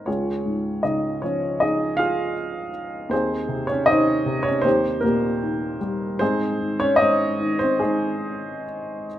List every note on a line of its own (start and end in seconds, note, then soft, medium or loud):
0.06 3.07 C#2 medium
0.06 0.82 C#4 soft
0.06 0.82 F4 soft
0.06 0.82 G#4 soft
0.06 0.81 C#5 medium
0.46 1.95 G#2 soft
0.83 2.32 C#3 soft
0.83 1.21 D#4 medium
0.83 1.24 D#5 medium
1.22 2.70 F3 soft
1.22 1.59 C#4 soft
1.22 1.62 C#5 medium
1.60 1.97 D#4 medium
1.60 1.97 G#4 medium
1.60 1.99 D#5 medium
1.97 2.70 F4 medium
1.97 2.70 G#4 medium
1.97 2.69 F5 medium
3.09 4.61 D#2 medium
3.09 3.66 D#4 medium
3.09 3.70 C5 medium
3.13 3.66 C4 medium
3.13 3.66 G#4 medium
3.48 4.25 C3 soft
3.67 3.88 C#5 medium
3.72 3.89 C#4 medium
3.86 4.63 D#3 soft
3.86 4.47 D#5 medium
3.91 4.44 D#4 medium
3.91 4.44 C5 medium
4.26 4.64 C3 medium
4.43 4.65 C#5 medium
4.48 4.65 C#4 medium
4.62 6.16 D#2 medium
4.62 5.03 C5 medium
4.66 5.02 C4 medium
4.66 5.02 D#4 medium
4.66 5.02 G4 medium
5.01 6.17 A#2 soft
5.01 5.76 A#4 medium
5.06 5.79 A#3 medium
5.06 5.78 G4 medium
5.42 6.18 D#3 soft
5.81 6.20 G3 medium
6.19 6.99 G#2 medium
6.19 6.77 C4 medium
6.19 6.77 D#4 medium
6.19 6.76 G#4 medium
6.19 6.81 C5 medium
6.60 7.39 D#3 soft
6.80 7.00 C#4 medium
6.80 6.98 C#5 loud
6.96 7.61 D#5 loud
7.00 8.64 G#2 medium
7.00 7.57 D#4 medium
7.00 7.57 C5 medium
7.40 9.06 D#3 medium
7.59 7.81 C5 medium
7.63 7.81 C4 medium
7.80 9.07 G#3 medium
7.80 9.07 C4 medium
7.80 9.07 D#4 medium
7.80 9.05 G#4 medium